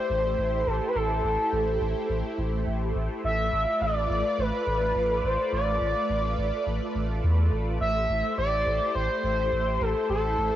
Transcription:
0.00 10.56 A3 medium
0.00 3.20 E4 medium
0.00 3.20 G4 medium
0.00 0.68 C5 loud
0.00 3.20 C5 medium
0.10 0.35 A1 loud
0.38 0.64 A1 medium
0.67 0.80 A1 loud
0.67 0.88 A4 medium
0.89 0.97 B4 medium
0.95 1.21 A1 loud
0.95 2.10 A4 medium
1.24 1.37 A1 medium
1.53 1.78 A1 medium
1.81 1.94 A1 loud
2.10 2.22 A1 loud
2.38 2.64 A1 loud
2.67 2.92 A1 medium
2.95 3.08 A1 loud
3.24 3.50 A1 loud
3.24 7.77 F4 medium
3.24 7.77 B4 medium
3.24 7.77 D5 medium
3.24 3.83 E5 loud
3.53 3.65 A1 medium
3.81 4.07 A1 medium
3.81 4.41 D5 loud
4.10 4.22 A1 loud
4.38 4.51 A1 loud
4.38 5.26 B4 loud
4.67 4.92 A1 loud
4.95 5.21 A1 medium
5.24 5.37 A1 loud
5.24 5.53 C5 medium
5.53 5.78 A1 loud
5.53 6.63 D5 loud
5.81 5.94 A1 medium
6.10 6.35 A1 medium
6.38 6.51 A1 loud
6.67 6.79 A1 loud
6.95 7.21 A1 loud
7.24 7.49 E2 loud
7.52 7.78 A1 loud
7.81 8.06 A1 loud
7.81 10.56 E4 medium
7.81 10.56 G4 medium
7.81 10.56 C5 medium
7.81 8.34 E5 loud
8.10 8.22 A1 medium
8.38 8.64 A1 medium
8.38 8.91 D5 loud
8.67 8.79 A1 loud
8.95 9.08 A1 loud
8.95 9.83 C5 loud
9.24 9.49 A1 loud
9.53 9.78 A1 medium
9.81 9.94 A1 loud
9.81 10.09 A4 medium
10.10 10.35 A1 loud
10.10 10.56 A4 medium
10.38 10.51 A1 medium

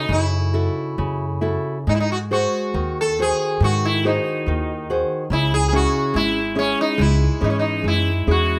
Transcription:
0.00 0.12 D#4 medium
0.00 0.36 E4 soft
0.00 0.36 F#4 soft
0.00 0.37 A4 soft
0.08 0.67 F#2 medium
0.08 0.96 C#3 medium
0.08 1.41 E4 medium
0.54 1.25 E4 soft
0.54 1.25 F#4 soft
0.54 1.26 A4 soft
0.98 1.56 F#2 medium
0.98 1.84 C#3 soft
1.41 1.77 E4 soft
1.41 1.78 F#4 soft
1.41 1.78 A4 soft
1.87 2.44 G#2 medium
1.87 2.72 G#3 medium
1.87 1.94 D#4 medium
1.95 2.00 E4 medium
2.00 2.11 D#4 medium
2.12 2.17 F#4 medium
2.31 3.01 F#4 soft
2.31 2.99 F#4 medium
2.31 3.01 G#4 soft
2.31 3.01 C5 soft
2.74 3.31 D#2 medium
2.74 3.59 D#3 soft
3.01 3.19 A4 medium
3.19 3.88 F#4 soft
3.19 3.88 G#4 soft
3.19 3.64 G#4 medium
3.19 3.88 C5 soft
3.60 4.16 G#2 medium
3.60 4.45 D#3 medium
3.60 3.85 F#4 medium
3.85 4.06 E4 medium
4.05 4.86 D#4 medium
4.05 4.73 F#4 soft
4.05 4.73 G#4 soft
4.05 4.73 C5 soft
4.46 5.01 D#2 medium
4.46 5.29 D#3 soft
4.90 5.23 F#4 soft
4.90 5.24 G#4 soft
4.90 5.24 C5 soft
5.30 5.85 C#2 medium
5.30 6.12 C#3 medium
5.30 5.52 E4 medium
5.54 5.67 G#4 medium
5.68 5.74 G#4 medium
5.73 6.39 C#4 soft
5.73 6.40 E4 soft
5.73 6.17 F#4 medium
5.73 6.40 G#4 soft
6.14 6.69 G#1 medium
6.14 6.96 G#3 medium
6.14 6.58 E4 medium
6.55 7.24 C#4 soft
6.55 6.79 C#4 medium
6.55 7.24 E4 soft
6.55 7.24 G#4 soft
6.81 7.01 D#4 medium
6.98 7.26 C#2 medium
6.98 7.81 G#3 medium
6.98 7.87 E4 medium
7.41 7.80 G#2 medium
7.41 8.10 E3 soft
7.41 8.10 C#4 soft
7.41 7.49 D#4 medium
7.41 8.10 G#4 soft
7.50 7.56 C#4 soft
7.59 7.87 D#4 medium
7.83 8.23 F#2 medium
7.83 8.59 G#3 soft
7.88 8.26 E4 medium
8.27 8.59 E2 medium
8.27 8.59 C#4 soft
8.27 8.59 E4 soft
8.27 8.59 G#4 soft
8.31 8.59 F#4 medium

